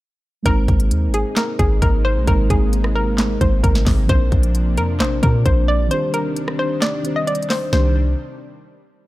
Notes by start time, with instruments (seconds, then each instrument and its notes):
0.43 808-style bass G#1, analog synth pad C3 G#3 A#3 D#4, synth keys G#3 C4 D#4, synth pluck A#4, kick, closed hi-hat
0.47 synth keys A#4 C5
0.68 808-style bass G#1, kick, closed hi-hat
0.80 closed hi-hat
0.91 808-style bass D#2, closed hi-hat
1.08 808-style bass G#1
1.14 synth pluck G#4, closed hi-hat
1.37 synth pluck A#4, snare, clap, closed hi-hat
1.59 808-style bass G#1, synth pluck G#4, kick, closed hi-hat
1.82 808-style bass G#1, synth pluck A#4, kick, closed hi-hat
2.05 synth pluck C5
2.16 808-style bass A#1
2.24 808-style bass G#1, synth keys G#3 C4 D#4, synth pluck A#4, kick, closed hi-hat
2.29 synth keys A#4 C5
2.50 808-style bass G#1, synth pluck G#4, kick, closed hi-hat
2.73 closed hi-hat
2.84 cross-stick
2.96 synth pluck A#4
3.18 snare, clap, closed hi-hat
3.40 808-style bass G#1, synth keys G#3 C4 D#4 A#4 C5, synth pluck C5, kick, closed hi-hat
3.63 808-style bass G#1, synth pluck A#4, kick, closed hi-hat
3.75 snare
3.86 808-style bass G#1, kick, snare, clap, open hi-hat
4.06 808-style bass A#1, synth keys F3 C4 D4, analog synth pad F3 D4, synth pluck C5, kick, closed hi-hat
4.11 synth keys A#4 C5
4.32 808-style bass A#1, kick, closed hi-hat
4.43 closed hi-hat
4.55 closed hi-hat
4.77 808-style bass F2, synth pluck A#4, closed hi-hat
5.00 808-style bass A#1, synth pluck C5, snare, clap, closed hi-hat
5.23 808-style bass A#2, synth pluck A#4, kick, closed hi-hat
5.46 808-style bass A#1, synth pluck C5, kick, closed hi-hat
5.68 synth pluck D5
5.88 synth keys D#3 C4 D4, analog synth pad D#3 G3 D4, synth pluck C5, closed hi-hat
5.93 synth keys G4 C5
6.14 synth pluck A#4, closed hi-hat
6.36 closed hi-hat
6.48 cross-stick
6.59 synth pluck C5
6.82 synth pluck D5, snare, clap, closed hi-hat
7.03 synth keys D#3 C4 D4 G4 C5, closed hi-hat
7.16 synth pluck D#5
7.27 synth pluck D5, closed hi-hat
7.35 closed hi-hat
7.43 closed hi-hat
7.50 synth pluck C5, snare, clap, open hi-hat
7.73 808-style bass C2, analog synth pad C3 D#3 G3 D4, synth keys D#3 D4 G4 C5, synth pluck C5, snare